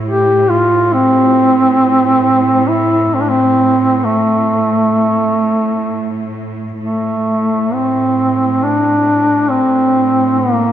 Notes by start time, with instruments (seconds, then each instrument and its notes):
Already playing: cello section A2
0.07 duduk G4
0.50 duduk F4
0.94 duduk C4
2.69 duduk E4
3.15 duduk C4
3.21 duduk D4
3.30 duduk C4
4.04 duduk A3
6.80 cello section A2, duduk A3
7.73 duduk C4
8.64 duduk D4
9.50 duduk C4
10.39 duduk A#3